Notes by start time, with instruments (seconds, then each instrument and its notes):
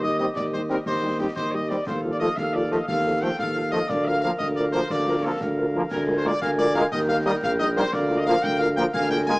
Already playing: tuba D#2, woodwind section G4 D#5
0.02 french horn section G3 D#4 G4, trumpet section D#5
0.19 trombone section G3 C4, french horn section G3 D#4 G4, trumpet section D#5
0.35 tuba D#2, trumpet section D5, concert bass drum, snare
0.53 french horn section G3 D#4 G4, trumpet section C5
0.69 trombone section G3 C4, french horn section G3 D#4 G4, trumpet section A#4, snare
0.86 tuba D#2, woodwind section G4 D#5, trumpet section C5, concert bass drum, snare
1.03 french horn section G3 D#4 G4
1.19 trombone section G3 C4, french horn section G3 D#4 G4, trumpet section G4
1.36 tuba D#2, woodwind section G4 D#5, trumpet section C5, concert bass drum, snare
1.52 french horn section G3 D#4 G4, trumpet section D#5
1.69 trombone section G3 C4, french horn section G3 D#4 G4, trumpet section D5, snare
1.87 tuba D#2, woodwind section A4 F5, trumpet section C5, concert bass drum, snare, crash
2.04 french horn section F3 F4 A4
2.12 trumpet section D5
2.20 trombone section F3 A3, french horn section F3 F4 A4, trumpet section D#5
2.37 tuba D#2, woodwind section A4 F5, trumpet section F5, concert bass drum, snare
2.54 french horn section F3 F4 A4, trumpet section D5
2.71 french horn section F3 F4 A4, trombone section F3 A3, trumpet section D#5, snare
2.88 tuba D#2, woodwind section A4 F5, trumpet section F5, concert bass drum, snare
3.05 french horn section F3 F4 A4
3.22 french horn section F3 F4 A4, trombone section F3 A3, trumpet section G5
3.39 tuba D#2, woodwind section A4 F5, trumpet section F5, concert bass drum, snare
3.55 french horn section F3 F4 A4
3.72 trombone section F3 A3, french horn section F3 F4 A4, trumpet section D#5, snare
3.89 tuba D2, woodwind section A#4 F5, trumpet section D5, concert bass drum, snare
4.05 french horn section F3 F4 A#4, trumpet section F5
4.22 trombone section F3 A#3, french horn section F3 F4 A#4, trumpet section F5
4.39 tuba D2, trumpet section D#5, concert bass drum, snare
4.56 french horn section F3 F4 A#4, trumpet section D5
4.72 french horn section F3 F4 A#4, trombone section F3 A#3, trumpet section C5, snare
4.90 tuba D2, woodwind section A#4 F5, trumpet section D5, concert bass drum, snare
5.08 french horn section F3 F4 A#4
5.24 trombone section F3 A#3, french horn section F3 F4 A#4, trumpet section A4
5.41 tuba D2, concert bass drum, snare
5.58 french horn section F3 F4 A#4
5.74 french horn section F3 F4 A#4, trombone section F3 A#3
5.91 tuba D2, woodwind section A#4 G#5, trumpet section A#4, concert bass drum, snare, crash
6.08 french horn section G#3 F4 A#4
6.18 trumpet section C5
6.25 french horn section G#3 F4 A#4, trombone section G#3 A#3, trumpet section D5
6.42 tuba D2, woodwind section A#4 G#5, trumpet section F5, concert bass drum, snare
6.58 french horn section G#3 F4 A#4, trumpet section D5
6.75 french horn section G#3 F4 A#4, trombone section G#3 A#3, trumpet section F5, snare
6.92 tuba D#2, woodwind section A#4 G5, trumpet section D#5, concert bass drum, snare
7.08 french horn section G3 D#4 A#4, trumpet section F5
7.25 trombone section G3 A#3, french horn section G3 D#4 A#4, trumpet section D#5
7.42 tuba A#1, trumpet section F5, concert bass drum, snare
7.59 french horn section G3 D#4 A#4, trumpet section D#5
7.76 trombone section G3 A#3, french horn section G3 D#4 A#4, trumpet section C5, snare
7.93 tuba D2, woodwind section A#4 F5, trumpet section D5, concert bass drum, snare
8.09 french horn section A#3 F4 A#4
8.18 trumpet section D#5
8.26 trombone section F3 A#3, french horn section A#3 F4 A#4, trumpet section F5
8.43 tuba D2, trumpet section G5, concert bass drum, snare
8.60 french horn section A#3 F4 A#4, trumpet section F5
8.77 trombone section F3 A#3, french horn section A#3 F4 A#4, trumpet section G5, snare
8.94 tuba D2, woodwind section A#4 G#5, trumpet section F5, concert bass drum, snare
9.10 french horn section A#3 F4 G#4, trumpet section G5
9.27 trombone section G#3 A#3, french horn section A#3 F4 G#4, trumpet section G#5